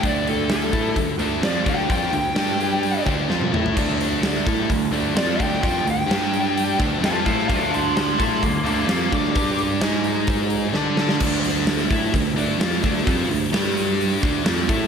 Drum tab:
CC |----------------|----------------|x---------------|----------------|
HH |o-o-o-o-o-o-o-o-|o-o-o-o-o-o-----|--o-o-o-o-o-o-o-|o-o-o-o-o-o-o-o-|
SD |----o-------o---|----o-------o---|----oo------o--o|----oo------o--o|
T1 |----------------|-------------o--|----------------|----------------|
T2 |----------------|--------------o-|----------------|----------------|
FT |----------------|---------------o|----------------|----------------|
BD |o-----o-o-----o-|o---------o-----|o-----o-o-----o-|o---------o---o-|

CC |----------------|----------------|x---------------|----------------|
HH |o-o-o-o-o-o-o-o-|o-o-o-o-o-o-----|--o-o-o-o-o-o-o-|o-o-o-o-o---o-o-|
SD |----oo------o--o|----oo------o-oo|----oo------o--o|----oo------o---|
T1 |----------------|----------------|----------------|----------------|
T2 |----------------|----------------|----------------|----------------|
FT |----------------|----------------|----------------|----------------|
BD |o-----o-o-----o-|o-------o-------|o-----o-o-----o-|o---------o---o-|